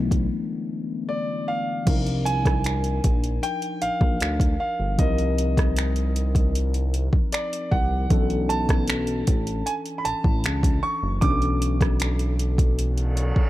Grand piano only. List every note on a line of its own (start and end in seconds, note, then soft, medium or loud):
1.09 1.49 D5 medium
1.48 2.28 F5 medium
2.25 3.39 G#5 loud
3.43 3.83 G5 loud
3.82 4.56 F5 loud
4.60 5.00 F5 medium
4.99 6.51 D#5 medium
7.33 7.73 D5 medium
7.71 8.52 F#5 medium
8.49 9.70 A5 loud
9.66 9.73 G#5 medium
9.98 10.05 B5 medium
10.05 10.85 A5 loud
10.83 11.23 C#6 loud
11.21 12.74 D6 loud